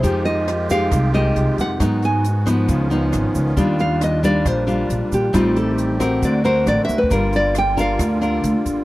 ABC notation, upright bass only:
X:1
M:4/4
L:1/16
Q:1/4=136
K:Fdor
V:1 name="Upright bass" clef=bass
F,,8 C,,4 C,, z F,,2 | A,,8 _D,,4 A,,, z D,,2 | E,,8 B,,,4 B,,, z B,,,2 | =A,,,8 D,,4 A,,, z D,,2 |
G,,,8 D,,4 D,, z G,,,2 |]